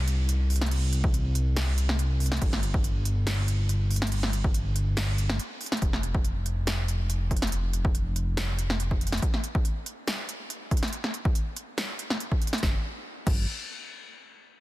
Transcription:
Already playing: C2
0.08 closed hi-hat
0.29 closed hi-hat
0.50 open hi-hat
0.56 closed hi-hat
0.61 snare, closed hi-hat
0.66 closed hi-hat
0.71 closed hi-hat, crash
0.93 closed hi-hat
1.04 kick
1.14 closed hi-hat
1.35 closed hi-hat
1.57 snare, closed hi-hat, crash
1.78 closed hi-hat
1.89 snare
1.99 closed hi-hat
2.20 open hi-hat
2.26 closed hi-hat
2.32 snare, closed hi-hat
2.37 closed hi-hat
2.42 G1, kick, closed hi-hat, crash
2.53 snare
2.63 closed hi-hat
2.74 kick
2.84 closed hi-hat
3.05 closed hi-hat
3.27 snare, closed hi-hat, crash
3.48 closed hi-hat
3.69 closed hi-hat
3.91 open hi-hat
3.96 closed hi-hat
4.02 snare, closed hi-hat
4.07 closed hi-hat
4.12 closed hi-hat, crash
4.23 snare
4.33 closed hi-hat
4.44 kick
4.54 closed hi-hat
4.76 closed hi-hat
4.97 snare, closed hi-hat, crash
5.18 closed hi-hat
5.30 snare
5.40 closed hi-hat
5.61 open hi-hat
5.66 closed hi-hat
5.72 snare, closed hi-hat
5.77 closed hi-hat
5.82 F1, kick, closed hi-hat
5.93 snare
6.03 closed hi-hat
6.15 kick
6.25 closed hi-hat
6.46 closed hi-hat
6.67 snare, closed hi-hat
6.88 closed hi-hat
7.10 closed hi-hat
7.31 kick, closed hi-hat
7.37 closed hi-hat
7.42 snare, closed hi-hat
7.47 closed hi-hat
7.52 closed hi-hat
7.74 closed hi-hat
7.85 kick
7.95 closed hi-hat
8.16 closed hi-hat
8.37 snare, closed hi-hat
8.59 closed hi-hat
8.70 snare
8.80 closed hi-hat
8.91 kick
9.01 closed hi-hat
9.07 closed hi-hat
9.12 snare, closed hi-hat
9.17 closed hi-hat
9.22 kick, closed hi-hat
9.34 snare
9.44 closed hi-hat
9.55 kick
9.65 closed hi-hat
9.86 closed hi-hat
10.08 snare, closed hi-hat
10.29 closed hi-hat
10.50 closed hi-hat
10.71 kick, closed hi-hat
10.77 closed hi-hat
10.83 snare, closed hi-hat
10.88 closed hi-hat
10.93 closed hi-hat
11.04 snare
11.14 closed hi-hat
11.25 kick
11.35 closed hi-hat
11.57 closed hi-hat
11.78 snare, closed hi-hat
11.99 closed hi-hat
12.10 snare
12.20 closed hi-hat
12.32 kick
12.42 closed hi-hat
12.47 closed hi-hat
12.53 snare, closed hi-hat
12.58 closed hi-hat
12.63 G1, kick, snare
13.27 G1, kick, crash

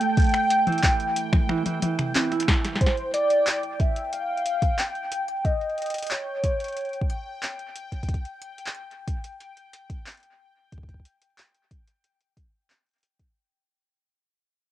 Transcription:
Already playing: G5
0.01 A3, closed hi-hat
0.17 kick, closed hi-hat
0.20 closed hi-hat
0.22 closed hi-hat
0.24 closed hi-hat
0.27 closed hi-hat
0.29 closed hi-hat
0.31 finger snap, closed hi-hat
0.34 closed hi-hat
0.50 closed hi-hat
0.67 E3, closed hi-hat, high tom
0.72 closed hi-hat
0.78 closed hi-hat
0.83 E3, kick, clap
1.00 closed hi-hat
1.16 closed hi-hat
1.33 finger snap, kick, high tom
1.49 E3, finger snap, high tom
1.66 E3, closed hi-hat, high tom
1.82 E3, closed hi-hat, high tom
1.99 finger snap, closed hi-hat, mid tom
2.15 E3, clap, closed hi-hat, mid tom
2.32 E4, finger snap, closed hi-hat
2.40 finger snap, closed hi-hat
2.48 E3, kick, snare
2.54 finger snap
2.65 snare, closed hi-hat
2.76 snare
2.81 C5 G5, kick, closed hi-hat
2.87 snare
2.98 closed hi-hat
3.14 D5, closed hi-hat
3.30 closed hi-hat
3.47 clap, closed hi-hat
3.63 closed hi-hat
3.80 E5, kick, closed hi-hat
3.96 closed hi-hat
4.13 F5, closed hi-hat
4.38 closed hi-hat
4.46 closed hi-hat
4.62 kick, closed hi-hat
4.79 G5, clap, closed hi-hat
4.95 closed hi-hat
5.12 closed hi-hat
5.28 closed hi-hat
5.45 D#5, kick, closed hi-hat
5.61 closed hi-hat
5.69 closed hi-hat
5.78 closed hi-hat
5.82 closed hi-hat
5.86 closed hi-hat
5.90 closed hi-hat
5.94 closed hi-hat
5.98 closed hi-hat
6.02 closed hi-hat
6.07 closed hi-hat
6.11 C#5, clap
6.44 kick, closed hi-hat
6.60 closed hi-hat
6.64 closed hi-hat
6.68 closed hi-hat
6.72 closed hi-hat
6.77 closed hi-hat
6.81 closed hi-hat
6.85 closed hi-hat
6.89 closed hi-hat
6.93 closed hi-hat
7.01 kick
7.10 closed hi-hat
7.43 clap, closed hi-hat
7.59 closed hi-hat
7.75 closed hi-hat
7.92 kick, closed hi-hat
8.03 kick, closed hi-hat
8.08 kick, closed hi-hat
8.14 kick, closed hi-hat
8.25 closed hi-hat
8.41 closed hi-hat
8.58 closed hi-hat
8.66 clap
8.74 closed hi-hat
8.91 closed hi-hat
9.07 kick, closed hi-hat
9.24 closed hi-hat
9.40 closed hi-hat
9.57 closed hi-hat
9.73 closed hi-hat
9.90 kick, closed hi-hat
10.06 clap, closed hi-hat
10.09 closed hi-hat
10.12 closed hi-hat
10.15 closed hi-hat
10.17 closed hi-hat
10.20 closed hi-hat
10.23 closed hi-hat
10.72 kick, closed hi-hat
10.78 kick
10.83 kick
10.89 kick, closed hi-hat
10.94 kick
11.00 kick
11.05 closed hi-hat
11.22 closed hi-hat
11.38 clap, closed hi-hat
11.55 closed hi-hat
11.71 kick, closed hi-hat
11.88 closed hi-hat
12.04 closed hi-hat
12.21 closed hi-hat
12.37 kick, closed hi-hat
12.70 clap, closed hi-hat
12.87 closed hi-hat
12.89 closed hi-hat
12.91 closed hi-hat
12.94 closed hi-hat
12.96 closed hi-hat
12.98 closed hi-hat
13.01 closed hi-hat
13.03 closed hi-hat
13.19 kick, closed hi-hat

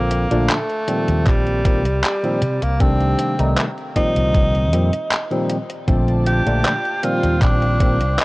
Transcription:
Already playing: A#1 A#2 D3 F3 A#3 C4 A4
0.11 closed hi-hat
0.31 A#1 A#2 D3 F3 A3 D4, closed hi-hat
0.50 A3, clap, closed hi-hat
0.70 closed hi-hat
0.87 A#2 D#3 F3 G3 C4, closed hi-hat
1.08 D#2, closed hi-hat
1.27 A#1 G3, kick, clap, closed hi-hat
1.47 closed hi-hat
1.64 A#2 D#3 F3 G3 C4, kick, closed hi-hat
1.85 C2, closed hi-hat
2.03 G3, clap, closed hi-hat
2.23 A#2 D#3 F3 G3 C4, closed hi-hat
2.42 C3, closed hi-hat
2.62 C2 A#3, closed hi-hat
2.80 C3 D#3 G3 A3 C4 D4, kick, closed hi-hat
3.01 closed hi-hat
3.19 closed hi-hat
3.38 C2 C3 D#3 G3 A3 D#4, closed hi-hat
3.57 clap, closed hi-hat
3.78 closed hi-hat
3.95 A#2 D#3 F3 G3 C4 D#4, kick, closed hi-hat
4.16 C2, closed hi-hat
4.34 kick, closed hi-hat
4.54 closed hi-hat
4.72 F2 A#2 D#3 F3 G3 C4, closed hi-hat
4.93 closed hi-hat
5.11 clap, closed hi-hat
5.30 A#2 D#3 F3 G3 C4, closed hi-hat
5.50 closed hi-hat
5.70 closed hi-hat
5.87 A#1 A#2 D3 F3 A3 C4 F4 D5 A5, kick, closed hi-hat
6.08 closed hi-hat
6.27 G4, closed hi-hat
6.46 A#1 A#2 D3 F3 A3 D4, closed hi-hat
6.65 clap, closed hi-hat
6.85 closed hi-hat
7.03 A#2 D#3 F3 G3 C4 F4 C5 F5 G5, closed hi-hat
7.24 D#2, closed hi-hat
7.42 A#1 D4, kick, clap, closed hi-hat
7.62 closed hi-hat
7.80 A#2 D#3 F3 G3 C4, kick, closed hi-hat
8.01 C2, closed hi-hat
8.19 D#4, clap, closed hi-hat

